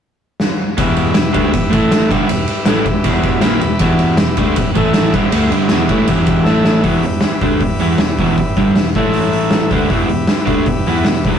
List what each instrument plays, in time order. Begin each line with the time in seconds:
0.40 snare
0.78 picked electric bass E1, overdriven electric guitar E2 B2 E3, transistor combo organ G4 B4 E5, kick, ride
0.97 ride
1.14 picked electric bass E1, overdriven electric guitar E2 B2, snare, ride
1.33 picked electric bass D2, overdriven electric guitar D3 A3 D4, kick, ride
1.52 picked electric bass E1, overdriven electric guitar E2 B2, kick, ride
1.70 picked electric bass A1, overdriven electric guitar A2 E3 A3, transistor combo organ A4, kick, ride
1.74 transistor combo organ E4 E5
1.91 snare, ride
2.07 overdriven electric guitar G2 D3, transistor combo organ G4 B4 E5
2.11 picked electric bass G1, overdriven electric guitar G3, kick, ride
2.28 picked electric bass E1, overdriven electric guitar E2 B2, ride
2.48 ride
2.66 picked electric bass A1, overdriven electric guitar A2 E3 A3, snare, ride
2.85 picked electric bass E1, overdriven electric guitar E2 B2, kick, ride
3.04 picked electric bass E1, overdriven electric guitar E2 B2 E3, kick, ride
3.23 kick, ride
3.40 picked electric bass A#1, overdriven electric guitar A#2 F3 A#3, transistor combo organ B5, snare, ride
3.60 picked electric bass E1, overdriven electric guitar E2 B2, ride
3.79 picked electric bass E1, overdriven electric guitar E2 B2 E3, kick, ride
3.99 ride
4.17 picked electric bass E1, overdriven electric guitar E2 B2, snare, ride
4.37 picked electric bass D2, overdriven electric guitar D3 A3 D4, kick, ride
4.56 picked electric bass E1, overdriven electric guitar E2 B2, kick, ride
4.75 picked electric bass A1, overdriven electric guitar A2 E3 A3, transistor combo organ E4 A4 E5, kick, ride
4.94 snare, ride
5.13 picked electric bass G1, overdriven electric guitar G2 D3 G3, transistor combo organ G4 B4 E5, kick, ride
5.32 picked electric bass D2, overdriven electric guitar D3 A3 D4, ride
5.51 picked electric bass G1, overdriven electric guitar G2 D3 G3, ride
5.69 picked electric bass E1, overdriven electric guitar E2 B2 E3, snare, ride
5.89 picked electric bass A1, overdriven electric guitar A2 E3 A3, kick, ride
6.07 picked electric bass E1, overdriven electric guitar E2 B2 E3, kick, ride
6.26 kick, ride
6.43 picked electric bass A1, overdriven electric guitar A2, transistor combo organ E4 A4 E5, snare
6.48 overdriven electric guitar E3 A3
6.64 snare
6.81 picked electric bass E1, overdriven electric guitar E2 B2 E3, transistor combo organ G4 B4 E5, kick, open hi-hat
7.03 picked electric bass E1, overdriven electric guitar E2 B2, open hi-hat
7.21 snare, open hi-hat
7.41 picked electric bass D2, overdriven electric guitar D3 A3 D4, kick, open hi-hat
7.60 picked electric bass E1, overdriven electric guitar E2 B2, kick, open hi-hat
7.79 picked electric bass E2, overdriven electric guitar E3 B3 E4, open hi-hat
7.98 picked electric bass E1, overdriven electric guitar E2 B2, snare, open hi-hat
8.18 picked electric bass E1, overdriven electric guitar E2 B2 E3, kick, open hi-hat
8.38 muted overdriven electric guitar stroke, kick, open hi-hat
8.57 picked electric bass G1, overdriven electric guitar G2 D3 G3, kick, open hi-hat
8.74 picked electric bass E1, overdriven electric guitar E2 B2, snare, open hi-hat
8.95 picked electric bass A1, overdriven electric guitar A2 E3 A3, transistor combo organ E4 A4 E5, kick, open hi-hat
9.14 open hi-hat
9.33 open hi-hat
9.51 snare, open hi-hat
9.71 picked electric bass D2, overdriven electric guitar D3 A3 D4, transistor combo organ G4 B4 E5, kick, open hi-hat
9.90 picked electric bass E1, overdriven electric guitar E2 B2 E3, kick, open hi-hat
10.09 picked electric bass E1, overdriven electric guitar E2 B2, open hi-hat
10.28 snare, open hi-hat
10.46 picked electric bass D2, overdriven electric guitar D3 A3 D4, kick, open hi-hat
10.66 picked electric bass E1, overdriven electric guitar E2 B2, kick, open hi-hat
10.86 picked electric bass E2, overdriven electric guitar E3 B3 E4, open hi-hat
11.05 picked electric bass E1, overdriven electric guitar E2 B2, snare, open hi-hat
11.25 picked electric bass E1, overdriven electric guitar E2 B2 E3, kick, open hi-hat
11.34 snare